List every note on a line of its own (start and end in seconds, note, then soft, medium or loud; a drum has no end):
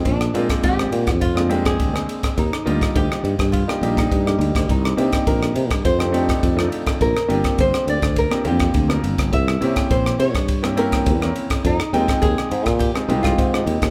0.05 0.29 A#1 medium
0.05 0.65 D4 medium
0.05 kick medium
0.05 ride medium
0.21 cross-stick medium
0.34 0.46 A#2 medium
0.34 1.03 G#3 medium
0.34 1.03 A#3 medium
0.34 1.03 C4 medium
0.34 1.03 D4 medium
0.34 1.03 F4 medium
0.34 ride medium
0.49 kick medium
0.49 cross-stick medium
0.49 ride medium
0.63 0.87 G#1 medium
0.63 1.10 G4 medium
0.63 kick medium
0.63 ride medium
0.79 cross-stick medium
0.92 1.09 A#2 medium
0.92 ride medium
1.07 1.80 F2 medium
1.07 1.14 D4 soft
1.07 1.21 F4 medium
1.07 1.14 G4 soft
1.07 kick medium
1.07 cross-stick medium
1.07 ride soft
1.21 1.62 F4 medium
1.21 kick medium
1.21 ride medium
1.35 1.48 G#3 medium
1.35 1.48 A#3 medium
1.35 1.48 C4 medium
1.35 1.48 D4 medium
1.35 1.49 F4 medium
1.35 cross-stick medium
1.49 1.91 G#3 medium
1.49 1.91 A#3 medium
1.49 1.91 C4 medium
1.49 1.91 D4 medium
1.49 1.91 G4 medium
1.49 ride medium
1.65 2.06 G#4 medium
1.65 kick medium
1.65 cross-stick medium
1.65 ride medium
1.80 2.03 D2 medium
1.80 kick medium
1.80 ride medium
1.93 2.36 G#3 medium
1.93 2.37 A#3 medium
1.93 2.37 C4 medium
1.93 2.37 D4 medium
1.93 2.37 G#4 medium
1.93 cross-stick medium
2.09 ride medium
2.23 kick medium
2.23 cross-stick medium
2.23 ride medium
2.38 2.49 D#2 medium
2.38 2.97 D#4 medium
2.38 kick medium
2.38 ride soft
2.53 cross-stick medium
2.65 2.78 D2 medium
2.65 3.34 G3 medium
2.65 3.34 A#3 medium
2.65 3.34 D4 medium
2.65 3.34 D#4 medium
2.65 3.34 F4 medium
2.65 ride soft
2.81 kick medium
2.81 cross-stick medium
2.81 ride soft
2.96 3.07 D2 medium
2.96 3.52 G4 medium
2.96 kick medium
2.96 ride medium
3.12 cross-stick medium
3.24 3.36 G2 medium
3.24 ride soft
3.38 3.62 G2 medium
3.38 3.45 D#4 soft
3.38 3.46 F4 soft
3.38 kick medium
3.38 cross-stick medium
3.38 ride soft
3.52 3.97 F4 medium
3.52 kick medium
3.52 ride medium
3.68 3.81 G3 medium
3.68 3.81 A#3 medium
3.68 3.81 D4 medium
3.68 3.81 D#4 medium
3.68 3.81 G4 medium
3.68 muted fretless electric bass stroke soft
3.68 cross-stick medium
3.81 4.05 A#1 medium
3.81 4.23 G3 medium
3.81 4.23 A#3 medium
3.81 4.23 D4 medium
3.81 4.23 D#4 medium
3.81 4.24 G4 medium
3.81 ride medium
3.97 4.37 D#4 medium
3.97 kick medium
3.97 cross-stick medium
3.97 ride medium
4.12 4.35 G2 medium
4.12 kick medium
4.12 ride soft
4.26 4.69 G3 medium
4.26 4.69 A#3 medium
4.26 4.69 D4 medium
4.26 4.69 D#4 medium
4.26 4.69 G4 medium
4.26 cross-stick medium
4.39 4.51 D2 medium
4.39 ride medium
4.55 4.66 D2 medium
4.55 kick medium
4.55 cross-stick medium
4.55 ride medium
4.69 4.92 C2 medium
4.69 5.29 D#4 medium
4.69 kick medium
4.69 ride soft
4.85 cross-stick medium
4.97 5.09 C3 medium
4.97 5.66 A#3 medium
4.97 5.66 C4 medium
4.97 5.66 D4 medium
4.97 5.66 D#4 medium
4.97 5.66 G4 medium
4.97 ride medium
5.12 kick medium
5.12 cross-stick medium
5.12 ride medium
5.27 5.50 A#1 medium
5.27 5.85 A#4 medium
5.27 kick medium
5.27 ride medium
5.43 cross-stick medium
5.56 5.71 C3 medium
5.56 ride medium
5.70 5.82 G2 medium
5.70 5.77 D#4 soft
5.70 5.77 F4 soft
5.70 kick medium
5.70 cross-stick medium
5.70 ride medium
5.85 6.32 F2 medium
5.85 6.68 C5 medium
5.85 kick medium
5.85 ride medium
5.99 6.11 A3 medium
5.99 6.11 C4 medium
5.99 6.11 D4 medium
5.99 6.11 D#4 medium
5.99 6.12 G4 medium
5.99 cross-stick medium
6.12 6.54 A3 medium
6.12 6.54 C4 medium
6.12 6.54 D4 medium
6.12 6.54 D#4 medium
6.12 6.54 G4 medium
6.12 ride medium
6.29 kick medium
6.29 cross-stick medium
6.29 ride medium
6.43 6.66 F2 medium
6.43 kick medium
6.43 ride medium
6.56 7.00 A3 medium
6.56 7.00 C4 medium
6.56 7.00 D4 medium
6.56 7.00 D#4 medium
6.56 7.00 F4 medium
6.56 cross-stick medium
6.72 ride medium
6.86 kick medium
6.86 cross-stick medium
6.86 ride medium
7.01 7.13 A#1 medium
7.01 7.61 A#4 medium
7.01 kick medium
7.01 ride soft
7.17 cross-stick medium
7.28 7.41 G1 medium
7.28 7.97 A#3 medium
7.28 7.97 C4 medium
7.28 7.97 D4 medium
7.28 7.98 F4 medium
7.28 7.97 G4 medium
7.28 ride soft
7.44 kick medium
7.44 cross-stick medium
7.44 ride medium
7.58 7.70 G1 medium
7.58 7.86 C5 medium
7.58 kick medium
7.58 ride medium
7.74 cross-stick medium
7.87 7.99 D2 medium
7.87 8.18 D5 medium
7.87 ride medium
8.02 8.26 D2 medium
8.02 8.09 F4 soft
8.02 8.09 A#4 soft
8.02 kick medium
8.02 cross-stick medium
8.02 ride soft
8.16 8.47 A#4 medium
8.16 kick medium
8.16 ride medium
8.31 8.43 A#3 medium
8.31 8.43 C4 medium
8.31 8.44 D4 medium
8.31 8.43 F4 medium
8.31 8.43 G4 medium
8.31 cross-stick medium
8.44 8.69 F2 medium
8.44 8.86 A#3 medium
8.44 8.86 C4 medium
8.44 8.86 D4 medium
8.44 8.86 F4 medium
8.44 8.86 G4 medium
8.44 9.00 G4 medium
8.44 ride medium
8.59 kick medium
8.59 cross-stick medium
8.59 ride soft
8.74 8.98 D2 medium
8.74 kick loud
8.74 ride soft
8.88 9.32 A#3 medium
8.88 9.32 C4 medium
8.88 9.32 D4 medium
8.88 9.32 F4 medium
8.88 9.32 A#4 medium
8.88 cross-stick medium
9.04 9.15 G1 medium
9.04 ride medium
9.18 9.30 G1 medium
9.18 kick medium
9.18 cross-stick medium
9.18 ride medium
9.32 9.56 C2 medium
9.32 9.91 E5 medium
9.32 kick medium
9.32 ride soft
9.48 cross-stick medium
9.61 9.73 C3 medium
9.61 10.29 A#3 medium
9.61 10.30 C4 medium
9.61 10.30 C#4 medium
9.61 10.30 E4 medium
9.61 10.29 G4 medium
9.61 ride medium
9.76 kick medium
9.76 cross-stick medium
9.76 ride medium
9.91 10.14 A#1 medium
9.91 10.19 C5 medium
9.91 kick loud
9.91 ride medium
10.06 cross-stick medium
10.19 10.35 C3 medium
10.19 10.73 C#5 medium
10.19 ride medium
10.34 11.08 G2 medium
10.34 10.40 E4 soft
10.34 10.40 A#4 soft
10.34 kick medium
10.34 cross-stick medium
10.34 ride soft
10.48 kick medium
10.48 ride medium
10.62 10.75 A#3 medium
10.62 10.76 C4 medium
10.62 10.75 C#4 medium
10.62 10.76 E4 medium
10.62 10.76 G4 medium
10.62 cross-stick medium
10.77 11.18 A#3 medium
10.77 11.18 C4 medium
10.77 11.18 C#4 medium
10.77 11.18 E4 medium
10.77 11.18 G4 medium
10.77 11.32 A#4 medium
10.77 ride medium
10.92 kick medium
10.92 cross-stick medium
10.92 ride medium
11.06 11.30 E2 medium
11.06 kick medium
11.06 ride medium
11.21 11.64 A#3 medium
11.21 11.64 C4 medium
11.21 11.64 C#4 medium
11.21 11.64 E4 medium
11.21 11.64 A#4 medium
11.21 cross-stick medium
11.36 ride medium
11.50 kick medium
11.50 cross-stick medium
11.50 ride medium
11.65 11.76 F2 medium
11.65 12.25 D#4 medium
11.65 kick medium
11.65 ride medium
11.80 cross-stick medium
11.93 12.05 D#2 medium
11.93 12.62 G#3 medium
11.93 12.62 C4 medium
11.93 12.62 D#4 medium
11.93 12.62 F4 medium
11.93 12.62 G5 medium
11.93 ride medium
12.08 kick medium
12.08 cross-stick medium
12.08 ride medium
12.22 12.34 D#2 medium
12.22 12.79 G#4 medium
12.22 kick loud
12.22 ride medium
12.38 cross-stick medium
12.51 12.66 G#2 medium
12.51 ride medium
12.66 12.90 A#2 medium
12.66 12.73 F4 soft
12.66 12.73 G#4 soft
12.66 kick medium
12.66 cross-stick medium
12.66 ride medium
12.79 13.24 G4 medium
12.79 kick medium
12.79 ride medium
12.94 13.07 G#3 medium
12.94 13.07 C4 medium
12.94 13.07 D#4 medium
12.94 13.07 F4 medium
12.94 13.08 G#4 medium
12.94 muted fretless electric bass stroke soft
12.94 cross-stick medium
13.08 13.32 C2 medium
13.08 13.50 G#3 medium
13.08 13.50 C4 medium
13.08 13.50 D#4 medium
13.08 13.50 F4 medium
13.08 13.50 G4 medium
13.08 ride soft
13.23 13.63 F4 medium
13.23 kick medium
13.23 cross-stick medium
13.23 ride medium
13.38 13.62 G#2 medium
13.38 kick medium
13.38 ride soft
13.53 13.90 G#3 medium
13.53 13.90 C4 medium
13.53 13.90 D#4 medium
13.53 13.90 F4 medium
13.53 13.90 G4 medium
13.53 cross-stick medium
13.66 13.78 D#2 medium
13.66 ride medium
13.82 13.90 D#2 medium
13.82 kick medium
13.82 cross-stick medium
13.82 ride medium